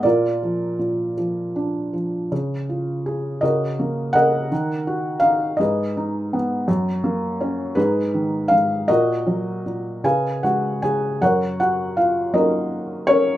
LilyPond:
<<
  \new Staff \with { instrumentName = "Felt piano" } { \time 6/8 \key ees \minor \tempo 4. = 54 << { d''4. r4. | r4. ees''4 ges''8~ | ges''4 f''8 ees''4 r8 | r4. ces''4 f''8 |
ees''4. aes''8 ges''8 aes''8 | \key fis \major fis''8 fis''8 eis''8 dis''4 cis''8 | } \\ { <f' bes'>4. r4. | r4. <ges' bes'>4 <bes' ees''>8~ | <bes' ees''>4 r8 <aes' ces''>4. | r4. <ees' aes'>4. |
<ges' bes'>4. <aes' ces'' f''>8 ges'8 aes'8 | <fis' ais' cis''>8 fis'8 eis'8 <dis' ais'>4 <cis' ais'>8 | } >> }
  \new Staff \with { instrumentName = "Felt piano" } { \clef bass \time 6/8 \key ees \minor bes,8 f8 bes,8 f8 d'8 f8 | des8 f'8 aes'8 des8 bes8 des8 | ees8 ges'8 ees'8 aes,8 ees'8 ces'8 | ges,8 bes8 des'8 aes,8 ees8 aes,8 |
bes,8 ges8 bes,8 des8 aes8 des8 | \key fis \major fis,4. <fis ais cis'>4. | }
>>